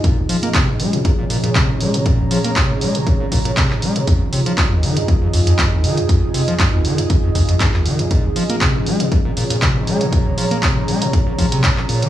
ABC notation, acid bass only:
X:1
M:4/4
L:1/16
Q:"Swing 16ths" 1/4=119
K:Bbdor
V:1 name="Acid bass" clef=bass
B,, B,,, F, B, C, A,, A, B,, B,, B,, B,, B,, C, A,, A, B,, | B,, B,,, F, B, C, A,, A, B,, B,, B,, B,, B,, C, A,, A, B,, | F,, F,,, C, F, G,, E,, E, F,, F,, F,, F,, F,, G,, E,, E, F,, | F,, F,,, C, F, G,, E,, E, F,, F,, F,, F,, F,, G,, E,, E, F,, |
B,, B,,, F, B, C, A,, A, B,, B,, B,, B,, B,, C, A,, A, B,, | B,, B,,, F, B, C, A,, A, B,, B,, B,, F, C, A,, B,, B,, E, |]